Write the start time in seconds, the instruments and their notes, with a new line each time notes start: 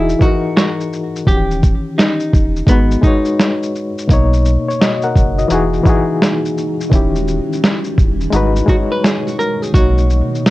Already playing: sub bass E1, reed electric piano E3 D#4 F#4 G#4, hollow-body jazz guitar E4
0.09 shaker
0.19 reed electric piano E3 D#4 F#4, hollow-body jazz guitar F#4, kick, shaker
0.25 reed electric piano A#4
0.57 hollow-body jazz guitar F#4, snare, closed hi-hat, shaker
0.81 shaker
0.93 shaker
1.16 shaker
1.25 sub bass D#1, reed electric piano D#3 C#4, hollow-body jazz guitar G4, kick, closed hi-hat, shaker
1.29 reed electric piano E3 F#4
1.37 reed electric piano G4
1.51 shaker
1.63 kick, shaker
1.98 hollow-body jazz guitar D#4, snare, closed hi-hat, shaker
2.20 shaker
2.33 sub bass E1, kick, shaker
2.56 shaker
2.66 sub bass G#1, reed electric piano G#3 D#4, hollow-body jazz guitar B3, kick, closed hi-hat, shaker
2.70 reed electric piano F#4 B4
2.91 shaker
3.02 reed electric piano G#3 D#4 F#4, hollow-body jazz guitar D#4, kick, shaker
3.07 reed electric piano C#5
3.25 shaker
3.40 snare, closed hi-hat, shaker
3.63 shaker
3.75 shaker
3.98 shaker
4.07 sub bass B1, reed electric piano B2 A#3, ambient pad B2 C#3 A#3 D#4, kick, closed hi-hat, shaker
4.11 reed electric piano D#4 C#5
4.33 shaker
4.45 shaker
4.68 reed electric piano C#5, shaker
4.81 reed electric piano F#4 D#5, snare, closed hi-hat, shaker
5.02 reed electric piano A#4 F#5, shaker
5.16 sub bass F#1, kick, shaker
5.38 reed electric piano F#4 D#5, shaker
5.48 sub bass E1, reed electric piano E3 D#4 F#4, ambient pad E3 G#3 F#4, closed hi-hat, shaker
5.54 reed electric piano G#4
5.74 shaker
5.83 reed electric piano E3 D#4 F#4, kick, shaker
5.89 reed electric piano G#4
6.22 snare, closed hi-hat, shaker
6.45 shaker
6.58 shaker
6.81 shaker
6.90 sub bass D#1, reed electric piano D#3 C#4 E4, ambient pad D#3 G3 C#4 E4, kick, closed hi-hat, shaker
6.95 reed electric piano G4
7.16 shaker
7.28 shaker
7.53 shaker
7.64 snare, closed hi-hat, shaker
7.84 shaker
7.98 sub bass E1, kick, shaker
8.21 shaker
8.30 sub bass G#1, ambient pad B2 D#3 G#3 F#4, reed electric piano G#3 D#4 F#4, closed hi-hat, shaker
8.36 reed electric piano B4
8.56 shaker
8.66 reed electric piano G#3 D#4 F#4, hollow-body jazz guitar F#4, kick, shaker
8.72 reed electric piano C#5
8.92 hollow-body jazz guitar B4
9.04 hollow-body jazz guitar G#4, snare, closed hi-hat, shaker
9.27 hollow-body jazz guitar F#4, shaker
9.39 hollow-body jazz guitar A#4, shaker
9.62 hollow-body jazz guitar G#4, shaker
9.72 sub bass B1, reed electric piano B2 A#3 D#4, ambient pad C#3 A#3 D#4, hollow-body jazz guitar F#4, kick, closed hi-hat, shaker
9.78 reed electric piano C#5
9.98 shaker
10.10 shaker
10.35 shaker
10.46 snare, closed hi-hat, shaker